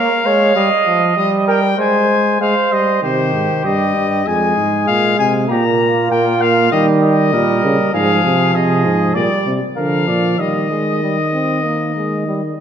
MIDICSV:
0, 0, Header, 1, 5, 480
1, 0, Start_track
1, 0, Tempo, 616016
1, 432, Time_signature, 4, 2, 24, 8
1, 4761, Tempo, 609137
1, 7641, Tempo, 628931
1, 9808, End_track
2, 0, Start_track
2, 0, Title_t, "Trumpet"
2, 0, Program_c, 0, 56
2, 0, Note_on_c, 0, 77, 83
2, 907, Note_off_c, 0, 77, 0
2, 911, Note_on_c, 0, 75, 79
2, 1019, Note_off_c, 0, 75, 0
2, 1160, Note_on_c, 0, 79, 84
2, 1393, Note_off_c, 0, 79, 0
2, 1397, Note_on_c, 0, 80, 85
2, 1869, Note_off_c, 0, 80, 0
2, 1879, Note_on_c, 0, 77, 77
2, 2120, Note_on_c, 0, 75, 74
2, 2132, Note_off_c, 0, 77, 0
2, 2351, Note_off_c, 0, 75, 0
2, 2356, Note_on_c, 0, 72, 78
2, 2812, Note_off_c, 0, 72, 0
2, 2844, Note_on_c, 0, 75, 76
2, 3325, Note_on_c, 0, 80, 78
2, 3337, Note_off_c, 0, 75, 0
2, 3793, Note_off_c, 0, 80, 0
2, 3798, Note_on_c, 0, 77, 83
2, 4036, Note_off_c, 0, 77, 0
2, 4043, Note_on_c, 0, 80, 82
2, 4152, Note_off_c, 0, 80, 0
2, 4283, Note_on_c, 0, 82, 77
2, 4752, Note_off_c, 0, 82, 0
2, 4766, Note_on_c, 0, 79, 75
2, 5000, Note_on_c, 0, 77, 77
2, 5012, Note_off_c, 0, 79, 0
2, 5235, Note_off_c, 0, 77, 0
2, 5240, Note_on_c, 0, 75, 79
2, 5349, Note_off_c, 0, 75, 0
2, 5483, Note_on_c, 0, 75, 80
2, 6187, Note_off_c, 0, 75, 0
2, 6201, Note_on_c, 0, 77, 83
2, 6683, Note_on_c, 0, 75, 72
2, 6695, Note_off_c, 0, 77, 0
2, 7152, Note_off_c, 0, 75, 0
2, 7157, Note_on_c, 0, 74, 72
2, 7464, Note_off_c, 0, 74, 0
2, 7647, Note_on_c, 0, 77, 73
2, 8122, Note_on_c, 0, 75, 67
2, 8133, Note_off_c, 0, 77, 0
2, 9802, Note_off_c, 0, 75, 0
2, 9808, End_track
3, 0, Start_track
3, 0, Title_t, "Flugelhorn"
3, 0, Program_c, 1, 56
3, 0, Note_on_c, 1, 70, 95
3, 203, Note_on_c, 1, 73, 97
3, 214, Note_off_c, 1, 70, 0
3, 436, Note_off_c, 1, 73, 0
3, 440, Note_on_c, 1, 75, 108
3, 1141, Note_off_c, 1, 75, 0
3, 1150, Note_on_c, 1, 70, 94
3, 1259, Note_off_c, 1, 70, 0
3, 1394, Note_on_c, 1, 72, 99
3, 1868, Note_off_c, 1, 72, 0
3, 1877, Note_on_c, 1, 72, 99
3, 2350, Note_off_c, 1, 72, 0
3, 2361, Note_on_c, 1, 67, 72
3, 3294, Note_off_c, 1, 67, 0
3, 3333, Note_on_c, 1, 68, 76
3, 4269, Note_off_c, 1, 68, 0
3, 4288, Note_on_c, 1, 67, 68
3, 4395, Note_off_c, 1, 67, 0
3, 4533, Note_on_c, 1, 65, 76
3, 5249, Note_on_c, 1, 67, 77
3, 5260, Note_off_c, 1, 65, 0
3, 5723, Note_off_c, 1, 67, 0
3, 5727, Note_on_c, 1, 70, 77
3, 6193, Note_off_c, 1, 70, 0
3, 6201, Note_on_c, 1, 68, 91
3, 6668, Note_off_c, 1, 68, 0
3, 6676, Note_on_c, 1, 68, 88
3, 7156, Note_on_c, 1, 74, 78
3, 7167, Note_off_c, 1, 68, 0
3, 7470, Note_off_c, 1, 74, 0
3, 7639, Note_on_c, 1, 70, 74
3, 7862, Note_off_c, 1, 70, 0
3, 7878, Note_on_c, 1, 74, 67
3, 8114, Note_off_c, 1, 74, 0
3, 8119, Note_on_c, 1, 75, 68
3, 9770, Note_off_c, 1, 75, 0
3, 9808, End_track
4, 0, Start_track
4, 0, Title_t, "Trombone"
4, 0, Program_c, 2, 57
4, 196, Note_on_c, 2, 56, 79
4, 428, Note_off_c, 2, 56, 0
4, 435, Note_on_c, 2, 55, 84
4, 541, Note_off_c, 2, 55, 0
4, 673, Note_on_c, 2, 53, 77
4, 907, Note_off_c, 2, 53, 0
4, 911, Note_on_c, 2, 55, 88
4, 1384, Note_off_c, 2, 55, 0
4, 1391, Note_on_c, 2, 56, 75
4, 1866, Note_off_c, 2, 56, 0
4, 1875, Note_on_c, 2, 56, 80
4, 1984, Note_off_c, 2, 56, 0
4, 2111, Note_on_c, 2, 55, 66
4, 2348, Note_off_c, 2, 55, 0
4, 2353, Note_on_c, 2, 51, 68
4, 2844, Note_on_c, 2, 55, 71
4, 2856, Note_off_c, 2, 51, 0
4, 3325, Note_on_c, 2, 56, 69
4, 3337, Note_off_c, 2, 55, 0
4, 4283, Note_on_c, 2, 58, 80
4, 4294, Note_off_c, 2, 56, 0
4, 5238, Note_off_c, 2, 58, 0
4, 5243, Note_on_c, 2, 55, 78
4, 5716, Note_off_c, 2, 55, 0
4, 5729, Note_on_c, 2, 55, 79
4, 6194, Note_off_c, 2, 55, 0
4, 6202, Note_on_c, 2, 53, 78
4, 7140, Note_off_c, 2, 53, 0
4, 7160, Note_on_c, 2, 55, 70
4, 7465, Note_off_c, 2, 55, 0
4, 7641, Note_on_c, 2, 53, 67
4, 8124, Note_on_c, 2, 55, 62
4, 8135, Note_off_c, 2, 53, 0
4, 8356, Note_off_c, 2, 55, 0
4, 8361, Note_on_c, 2, 56, 57
4, 8597, Note_off_c, 2, 56, 0
4, 8604, Note_on_c, 2, 55, 60
4, 8712, Note_off_c, 2, 55, 0
4, 8841, Note_on_c, 2, 60, 60
4, 9080, Note_on_c, 2, 58, 62
4, 9092, Note_off_c, 2, 60, 0
4, 9316, Note_off_c, 2, 58, 0
4, 9321, Note_on_c, 2, 56, 58
4, 9555, Note_off_c, 2, 56, 0
4, 9559, Note_on_c, 2, 55, 61
4, 9668, Note_off_c, 2, 55, 0
4, 9808, End_track
5, 0, Start_track
5, 0, Title_t, "Bass trombone"
5, 0, Program_c, 3, 57
5, 2360, Note_on_c, 3, 48, 72
5, 2585, Note_off_c, 3, 48, 0
5, 2598, Note_on_c, 3, 44, 62
5, 2708, Note_off_c, 3, 44, 0
5, 2838, Note_on_c, 3, 43, 65
5, 3078, Note_off_c, 3, 43, 0
5, 3083, Note_on_c, 3, 43, 61
5, 3318, Note_off_c, 3, 43, 0
5, 3322, Note_on_c, 3, 41, 66
5, 3552, Note_off_c, 3, 41, 0
5, 3556, Note_on_c, 3, 44, 66
5, 3794, Note_off_c, 3, 44, 0
5, 3803, Note_on_c, 3, 46, 66
5, 4034, Note_off_c, 3, 46, 0
5, 4039, Note_on_c, 3, 48, 68
5, 4277, Note_off_c, 3, 48, 0
5, 4282, Note_on_c, 3, 46, 86
5, 4752, Note_off_c, 3, 46, 0
5, 4762, Note_on_c, 3, 46, 87
5, 5234, Note_off_c, 3, 46, 0
5, 5246, Note_on_c, 3, 51, 89
5, 5726, Note_on_c, 3, 46, 83
5, 5737, Note_off_c, 3, 51, 0
5, 5962, Note_off_c, 3, 46, 0
5, 5967, Note_on_c, 3, 49, 79
5, 6073, Note_off_c, 3, 49, 0
5, 6206, Note_on_c, 3, 44, 81
5, 6436, Note_off_c, 3, 44, 0
5, 6443, Note_on_c, 3, 48, 71
5, 6675, Note_off_c, 3, 48, 0
5, 6683, Note_on_c, 3, 48, 69
5, 6922, Note_on_c, 3, 44, 66
5, 6934, Note_off_c, 3, 48, 0
5, 7152, Note_off_c, 3, 44, 0
5, 7157, Note_on_c, 3, 46, 69
5, 7266, Note_off_c, 3, 46, 0
5, 7401, Note_on_c, 3, 48, 66
5, 7510, Note_off_c, 3, 48, 0
5, 7646, Note_on_c, 3, 50, 66
5, 7881, Note_on_c, 3, 46, 62
5, 7892, Note_off_c, 3, 50, 0
5, 8114, Note_off_c, 3, 46, 0
5, 8118, Note_on_c, 3, 51, 64
5, 9770, Note_off_c, 3, 51, 0
5, 9808, End_track
0, 0, End_of_file